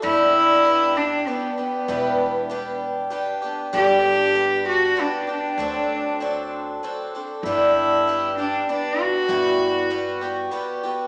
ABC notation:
X:1
M:3/4
L:1/8
Q:1/4=97
K:G
V:1 name="Cello"
E3 D B, B,- | B,3 z3 | G3 F D D- | D3 z3 |
E3 D D F- | F3 z3 |]
V:2 name="Twelve-string acoustic guitar"
[G,,D,G,B,DG]2 [G,B,DG] [G,B,DG] [G,B,DG] [G,B,DG] | [E,G,B,DG]2 [G,B,DG]2 [G,B,DG] [B,DG] | [G,,D,G,B,DG]2 [G,B,DG] [G,B,D] [G,B,DG] [G,B,DG] | [D,F,CDA]2 [F,CDA]2 [F,CDA] [CDA] |
[G,,D,G,B,DG]2 [G,B,DG] [G,B,DG] [G,B,D]2 | [G,,E,G,B,F]2 [G,B,F] [G,B,FG] [G,B,FG] [G,B,FG] |]
V:3 name="Upright bass" clef=bass
G,,,4 z2 | E,,,4 z2 | G,,,4 z2 | D,,4 z2 |
G,,,4 z2 | G,,,4 z2 |]